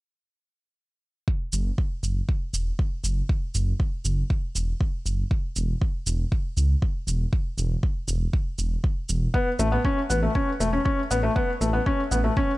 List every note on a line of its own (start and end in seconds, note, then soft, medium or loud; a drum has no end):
1.28 kick medium
1.53 1.71 F#1 medium
1.53 shaker medium
1.78 kick medium
2.03 2.21 F#1 medium
2.03 shaker medium
2.29 kick medium
2.54 2.72 E1 medium
2.54 shaker medium
2.79 kick medium
3.04 3.22 F#1 medium
3.04 shaker medium
3.29 kick medium
3.55 3.73 F#1 medium
3.55 shaker medium
3.80 kick medium
4.05 4.23 F#1 medium
4.05 shaker medium
4.30 kick medium
4.55 4.74 E1 medium
4.55 shaker medium
4.81 kick medium
5.06 5.24 F#1 medium
5.06 shaker medium
5.31 kick medium
5.56 5.74 E1 medium
5.56 shaker medium
5.82 kick medium
6.07 6.25 E1 medium
6.07 shaker medium
6.32 kick medium
6.57 6.75 C#2 medium
6.57 shaker medium
6.82 kick medium
7.07 7.26 E1 medium
7.07 shaker medium
7.33 kick medium
7.58 7.76 E1 medium
7.58 shaker medium
7.83 kick medium
8.08 8.26 E1 medium
8.08 shaker medium
8.33 kick medium
8.58 8.77 E1 medium
8.58 shaker medium
8.84 kick medium
9.09 9.28 E1 medium
9.09 shaker medium
9.34 9.47 B3 medium
9.34 kick medium
9.59 9.78 A1 medium
9.59 9.66 A3 medium
9.59 shaker medium
9.72 9.79 B3 medium
9.85 9.98 C#4 medium
9.85 kick medium
10.10 10.28 A1 medium
10.10 10.16 B3 medium
10.10 shaker medium
10.23 10.29 A3 medium
10.35 10.48 C#4 medium
10.35 kick medium
10.60 10.78 E1 medium
10.60 10.67 A3 medium
10.60 shaker medium
10.73 10.80 C#4 medium
10.85 10.99 C#4 medium
10.85 kick medium
11.11 11.29 A1 medium
11.11 11.17 B3 medium
11.11 shaker medium
11.23 11.30 A3 medium
11.36 11.49 B3 medium
11.36 kick medium
11.61 11.79 A1 medium
11.61 11.68 A3 medium
11.61 shaker medium
11.73 11.80 B3 medium
11.86 12.00 C#4 medium
11.86 kick medium
12.11 12.30 A1 medium
12.11 12.18 B3 medium
12.11 shaker medium
12.24 12.31 A3 medium
12.37 12.50 C#4 medium
12.37 kick medium